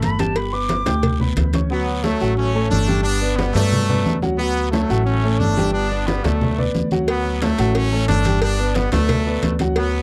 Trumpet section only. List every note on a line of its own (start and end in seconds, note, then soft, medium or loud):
1.71 2.02 F#3 medium
1.71 2.02 B3 medium
2.04 2.38 F#3 medium
2.04 2.37 A3 medium
2.37 2.69 A3 medium
2.37 2.69 C#4 medium
2.70 3.03 A3 medium
2.70 3.02 D4 loud
3.04 3.36 B3 medium
3.04 3.36 D4 loud
3.37 3.55 G3 medium
3.37 3.54 B3 medium
3.54 4.19 F#3 medium
3.54 4.18 A3 loud
4.39 4.71 F#3 medium
4.39 4.70 B3 loud
4.72 5.04 F#3 medium
4.72 5.03 A3 medium
5.06 5.39 A3 medium
5.06 5.38 C#4 medium
5.40 5.74 A3 medium
5.40 5.72 D4 loud
5.74 6.06 B3 medium
5.74 6.05 D4 loud
6.07 6.25 G3 medium
6.07 6.24 B3 medium
6.24 6.65 F#3 medium
6.24 6.64 A3 medium
7.09 7.40 F#3 medium
7.09 7.40 B3 medium
7.43 7.76 F#3 medium
7.43 7.75 A3 medium
7.76 8.08 A3 medium
7.76 8.09 C#4 loud
8.09 8.40 A3 medium
8.09 8.40 D4 loud
8.42 8.74 B3 medium
8.42 8.74 D4 loud
8.76 8.93 G3 medium
8.76 8.93 B3 medium
8.93 9.56 F#3 medium
8.93 9.56 A3 medium
9.77 10.02 F#3 medium
9.77 10.02 B3 medium